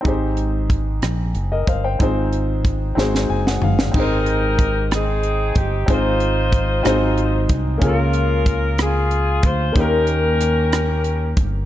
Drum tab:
CC |------------|------------|x-----------|------------|
HH |x-x-x-x-x-x-|x-x-x-------|--x-x-x-x-x-|x-x-x-x-x-x-|
SD |------r-----|----r-oo-o-o|------r-----|------r-----|
FT |------------|----------o-|------------|------------|
BD |o---o-----o-|o---o-------|o---o-----o-|o---o-----o-|

CC |------------|------------|
HH |x-x-x-x-x-x-|x-x-x-x-x-x-|
SD |------r-----|----r-r-----|
FT |------------|------------|
BD |o---o-----o-|o---------o-|